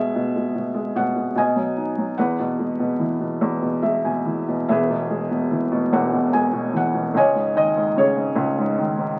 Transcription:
Already playing: B2 G#3 G#4 E5
0.15 B2
0.36 G#3
0.55 B2
0.74 G#3
0.95 B2 F#5
1.16 G#3
1.35 B2 D#5 G#5
1.56 F#3
1.77 D#4
1.98 F#3
2.18 E2 B4 F#5
2.39 B2
2.59 G#3
2.79 B2
2.99 E3
3.20 B2
3.41 E2
3.62 B2
3.82 G#3 E5
4.05 B2 G#5
4.25 E3
4.48 B2
4.68 E1 E2 G#4 B4 E5
4.89 B2
5.09 G#3
5.30 B2
5.51 E3
5.72 B2
5.92 E1 E2 F#5
6.12 B2
6.33 G#3 G#5
6.53 B2
6.73 E3 F#5
6.94 B2
7.14 C#2 C#5 D#5 G#5
7.35 G#2
7.55 D#3 D#5
7.76 G#2
7.96 C#3 G#4 C#5
8.17 G#2
8.36 C#2
8.58 G#2
8.78 D#3
8.98 G#2

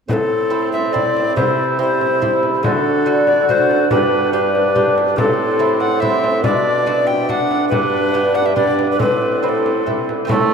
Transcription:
0.08 A2 C4 B4, frame drum
0.13 A4
0.50 C4 E4 A4
0.72 E5, frame drum
0.93 C4 E4 A4 D5, frame drum
1.17 frame drum
1.36 C3 E4 C5, frame drum
1.79 C4 E4 G4 C5
2.01 frame drum
2.21 C4 E4 G4, frame drum
2.43 frame drum
2.63 D3 F#4 A4, frame drum
3.06 A3 D4 F#4
3.27 D5, frame drum
3.48 A3 D4 F#4 C5, frame drum
3.71 frame drum
3.90 G2 D4 B4, frame drum
4.33 D4 G4 B4
4.55 frame drum
4.75 D4 G4, frame drum
4.98 frame drum
5.16 A2 C4 A4, frame drum
5.59 C4 E4
5.80 F#5, frame drum
6.00 C4 E4 E5, frame drum
6.24 frame drum
6.44 B2 D4 D5, frame drum
6.86 B3 D4 F#4
7.07 G5, frame drum
7.29 B3 D4 F#4 F#5, frame drum
7.51 frame drum
7.69 G2 D4 B4, frame drum
8.14 B3 D4 G4
8.35 F#5, frame drum
8.46 E5
8.56 B3 D4 G4 D5, frame drum
8.79 frame drum
8.92 B4
8.99 A2 C4 B4, frame drum
9.42 C4 E4 B4
9.49 A4
9.66 frame drum
9.86 C4 E4, frame drum
10.09 frame drum
10.25 A3 C4 E4
10.29 A2 A3 A4, frame drum

